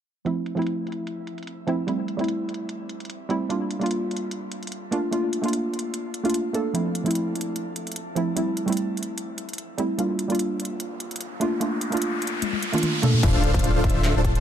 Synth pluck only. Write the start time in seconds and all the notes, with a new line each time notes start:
0.25 F3 A3 C4 E4
0.55 F3 A3 C4 E4
1.67 F3 A3 C4 E4
1.87 G3 A3 C4 E4
2.17 G3 A3 C4
2.21 E4
3.29 G3 A3 C4 E4
3.49 G3 A#3 D4 F4
3.79 G3 A#3 D4
3.83 F4
4.91 A3 A#3 D4 F4
5.11 A3 A#3 D4 F4
5.42 A3 A#3 D4 F4
6.23 A3 A#3 D4 F4
6.53 A3 A#3 D4 A4
6.73 F3 A3 C4 E4
7.04 F3 A3 C4 E4
8.15 F3 A3 C4 E4
8.36 G3 A3 C4 E4
8.66 G3 A3 C4 E4
9.78 G3 A3 C4 E4
9.98 G3 A#3 D4 F4
10.28 G3 A#3 D4 F4
11.40 A3 A#3 D4 F4
11.60 A3 A#3 D4 F4
11.90 A3 A#3 D4 F4
12.72 A3 A#3 D4 F4
13.02 A3 A#3 D4 A4